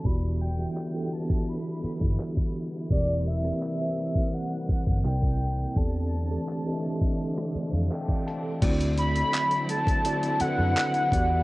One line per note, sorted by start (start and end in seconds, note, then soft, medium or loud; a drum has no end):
0.04 0.65 E1 loud
0.04 2.88 D3 medium
0.04 0.45 E3 medium
0.04 5.72 E3 medium
0.04 5.72 G3 medium
0.04 2.88 B3 medium
0.04 0.45 B3 medium
0.04 5.01 E4 medium
0.04 0.45 F#4 medium
0.04 0.45 G4 medium
0.04 0.46 D5 medium
0.04 0.41 B5 loud
0.04 kick loud
0.04 closed hi-hat medium
0.41 1.08 G5 loud
0.58 0.85 E3 medium
0.58 0.85 B3 medium
0.58 0.85 F#4 medium
0.58 0.86 G4 medium
0.58 0.86 E5 medium
0.77 clap loud
0.77 closed hi-hat medium
0.94 2.01 E3 medium
0.94 2.02 B3 medium
0.94 2.02 F#4 medium
0.94 2.02 G4 medium
0.94 2.02 A4 medium
1.12 1.50 A5 loud
1.12 closed hi-hat medium
1.30 kick loud
1.47 2.55 B5 loud
1.47 closed hi-hat medium
1.82 muted fingered electric bass stroke soft
1.82 closed hi-hat medium
2.01 2.16 G1 medium
2.01 kick medium
2.19 clap loud
2.19 closed hi-hat medium
2.37 kick medium
2.55 closed hi-hat soft
2.64 closed hi-hat medium
2.73 closed hi-hat medium
2.81 closed hi-hat medium
2.90 3.50 E1 loud
2.90 5.03 C3 medium
2.90 3.31 E3 medium
2.90 5.73 A#3 medium
2.90 3.31 C4 medium
2.90 3.31 G4 medium
2.90 3.31 A#4 medium
2.90 3.29 D5 medium
2.90 3.31 D5 medium
2.90 kick loud
2.90 closed hi-hat medium
3.27 4.36 E5 loud
3.44 3.71 E3 medium
3.44 3.71 C4 medium
3.44 3.71 G4 medium
3.44 3.71 A#4 medium
3.44 3.72 D5 medium
3.44 cross-stick medium
3.63 clap loud
3.63 closed hi-hat medium
3.80 4.87 E3 medium
3.80 4.87 C4 medium
3.80 4.88 G4 medium
3.80 4.88 A#4 medium
3.80 4.88 C5 medium
3.97 closed hi-hat medium
4.15 kick loud
4.33 5.05 F#5 loud
4.33 closed hi-hat medium
4.68 muted fingered electric bass stroke soft
4.68 kick medium
4.68 closed hi-hat medium
4.87 5.02 G1 medium
4.87 kick medium
5.04 5.65 C2 loud
5.04 5.62 C3 medium
5.04 5.75 C3 medium
5.04 5.62 C4 medium
5.04 5.75 E4 medium
5.04 5.62 E4 medium
5.04 5.62 A#4 medium
5.04 5.63 D5 medium
5.04 5.79 G5 loud
5.04 clap loud
5.04 closed hi-hat medium
5.23 kick medium
5.40 closed hi-hat soft
5.49 closed hi-hat medium
5.58 closed hi-hat medium
5.67 closed hi-hat medium
5.76 6.36 E2 loud
5.76 8.59 C3 medium
5.76 8.59 D3 medium
5.76 6.16 E3 medium
5.76 8.59 A3 medium
5.76 8.59 C4 medium
5.76 6.17 C4 medium
5.76 8.59 D4 medium
5.76 6.17 G4 medium
5.76 6.17 A4 medium
5.76 6.17 D5 medium
5.76 7.91 A5 loud
5.76 kick loud
5.76 closed hi-hat medium
6.30 6.57 E3 medium
6.30 6.57 C4 medium
6.30 6.57 G4 medium
6.30 6.57 A4 medium
6.30 6.57 D5 medium
6.49 clap loud
6.49 closed hi-hat medium
6.65 7.73 E3 medium
6.65 7.73 C4 medium
6.65 7.73 G4 medium
6.65 7.73 A4 medium
6.65 6.73 D#5 medium
6.73 7.77 E5 loud
6.83 closed hi-hat medium
7.01 kick loud
7.19 closed hi-hat medium
7.38 cross-stick medium
7.54 7.72 D5 medium
7.54 muted fingered electric bass stroke soft
7.54 closed hi-hat medium
7.73 7.88 F2 medium
7.73 7.90 F5 medium
7.91 8.24 G5 medium
7.91 clap loud
7.91 closed hi-hat medium
8.09 kick medium
8.27 8.60 A5 medium
8.27 closed hi-hat medium
8.62 9.22 D2 loud
8.62 9.69 D3 medium
8.62 11.43 D3 medium
8.62 11.09 F#3 medium
8.62 11.09 A3 medium
8.62 11.09 C4 medium
8.62 9.69 C4 medium
8.62 11.43 E4 medium
8.62 9.70 E4 medium
8.62 9.70 F#4 medium
8.62 9.70 D5 loud
8.62 kick loud
8.62 closed hi-hat medium
8.62 crash loud
8.81 closed hi-hat medium
8.98 9.71 B5 loud
8.98 closed hi-hat medium
9.16 closed hi-hat medium
9.34 clap loud
9.34 closed hi-hat medium
9.51 closed hi-hat soft
9.69 10.40 A5 loud
9.69 closed hi-hat medium
9.87 kick loud
9.87 closed hi-hat medium
10.05 10.32 D3 medium
10.05 10.32 C4 medium
10.05 10.32 E4 medium
10.05 10.32 F#4 medium
10.05 10.32 D5 medium
10.05 closed hi-hat medium
10.23 closed hi-hat medium
10.40 11.12 D3 medium
10.40 11.12 C4 medium
10.40 11.12 E4 medium
10.40 11.11 F#4 medium
10.40 10.48 A4 medium
10.40 11.43 F#5 loud
10.40 muted fingered electric bass stroke soft
10.40 closed hi-hat medium
10.48 11.16 B4 medium
10.59 10.73 F#2 medium
10.77 clap loud
10.77 closed hi-hat medium
10.94 closed hi-hat soft
11.12 11.43 E2 loud
11.12 11.43 E3 medium
11.12 11.43 G3 medium
11.12 11.43 B3 medium
11.12 11.43 F#4 medium
11.12 11.43 G4 medium
11.12 11.43 D5 medium
11.12 kick medium
11.12 closed hi-hat medium